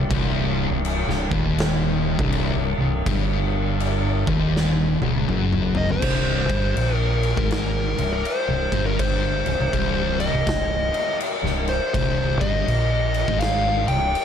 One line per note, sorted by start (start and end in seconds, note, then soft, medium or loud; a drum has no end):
0.10 0.67 C1 loud
0.10 0.69 C2 loud
0.10 kick loud
0.10 crash medium
0.71 1.05 C1 medium
0.71 0.98 C2 medium
0.85 crash soft
1.07 1.29 C1 medium
1.07 1.31 C2 medium
1.07 snare soft
1.31 2.15 D#1 loud
1.31 2.18 D#2 loud
1.31 kick loud
1.58 snare loud
1.58 crash medium
2.19 2.53 C1 loud
2.19 2.55 C2 loud
2.19 kick loud
2.32 crash medium
2.56 2.77 C1 medium
2.56 2.80 C2 medium
2.78 3.04 C1 medium
2.78 3.01 C2 medium
3.06 4.23 G1 medium
3.06 4.26 G2 loud
3.06 kick loud
3.06 crash medium
3.80 crash medium
4.27 4.97 D#1 loud
4.27 5.00 D#2 medium
4.27 kick loud
4.57 snare medium
5.01 5.26 C#1 loud
5.01 5.28 C#2 medium
5.01 high tom medium
5.29 5.99 F#1 loud
5.29 6.02 F#2 loud
5.29 mid tom medium
5.53 mid tom medium
5.75 5.90 D#5 loud
5.75 floor tom loud
5.89 6.95 C5 medium
5.89 floor tom medium
6.02 6.46 C1 medium
6.02 6.48 C2 loud
6.02 kick loud
6.02 crash loud
6.02 crash medium
6.49 6.74 G1 medium
6.49 6.76 G2 loud
6.49 kick loud
6.49 crash soft
6.76 7.33 A#1 medium
6.76 7.36 A#2 loud
6.76 crash medium
6.95 7.48 A#4 medium
7.23 crash medium
7.37 7.94 G#1 medium
7.37 7.96 G#2 loud
7.37 kick loud
7.51 8.12 A#4 medium
7.51 snare loud
7.51 crash medium
7.98 8.23 C1 medium
7.98 8.19 C2 medium
7.98 crash medium
8.13 8.26 A#4 medium
8.25 8.87 C5 medium
8.25 crash medium
8.48 8.70 C1 medium
8.48 8.72 C2 medium
8.72 9.42 G1 medium
8.72 9.45 G2 medium
8.72 kick loud
8.72 crash medium
8.86 8.99 A#4 medium
8.99 10.20 C5 medium
8.99 kick loud
8.99 crash medium
9.46 9.59 C1 medium
9.46 9.59 C2 medium
9.46 crash medium
9.59 9.72 C1 medium
9.59 9.72 C2 medium
9.73 10.29 C1 loud
9.73 10.33 C2 loud
9.73 kick loud
9.73 crash medium
10.20 11.17 D#5 loud
10.20 crash medium
10.33 10.46 C1 medium
10.33 10.47 C2 medium
10.47 10.90 C1 medium
10.47 10.85 C2 medium
10.47 kick loud
10.47 snare loud
10.47 crash medium
10.94 crash medium
11.20 crash medium
11.43 11.78 C1 medium
11.43 11.76 C2 medium
11.43 snare soft
11.68 11.93 C5 medium
11.68 crash soft
11.94 12.38 C1 medium
11.94 12.40 C2 loud
11.94 12.40 C5 medium
11.94 kick loud
11.94 crash medium
12.40 12.66 G1 medium
12.40 12.68 G2 loud
12.40 13.40 D#5 medium
12.40 kick loud
12.40 crash soft
12.68 13.24 A#1 medium
12.68 13.28 A#2 loud
12.68 crash medium
13.14 crash medium
13.28 13.85 G#1 medium
13.28 13.87 G#2 loud
13.28 kick loud
13.40 13.84 F5 loud
13.40 snare loud
13.40 crash medium
13.88 14.14 C1 medium
13.88 14.10 C2 medium
13.88 14.25 G5 loud
13.88 crash medium
14.15 crash medium